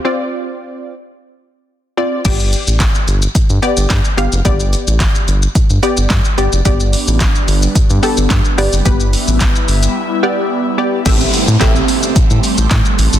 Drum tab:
CC |----------------|x---------------|----------------|----------------|
HH |----------------|x-x-x-x-x-x-x-x-|x-x-x-x-x-x-x-x-|x-o-x-o-x-o-x-o-|
SH |----------------|xxxxxxxxxxxxxxxx|xxxxxxxxxxxxxxxx|xxxxxxxxxxxxxxxx|
CP |----------------|----x-------x---|----x-------x---|----x-------x---|
SD |----------------|----o-------o---|----o-------o---|----o-------o---|
BD |----------------|o---o---o---o---|o---o---o---o---|o---o---o---o---|

CC |----------------|x---------------|
HH |x-o-x-o---------|x-o-x-o-x-o-x-o-|
SH |xxxxxxxx--------|xxxxxxxxxxxxxxxx|
CP |----x-----------|----x-------x---|
SD |----o-----------|----o-------o---|
BD |o---o-----------|o---o---o---o---|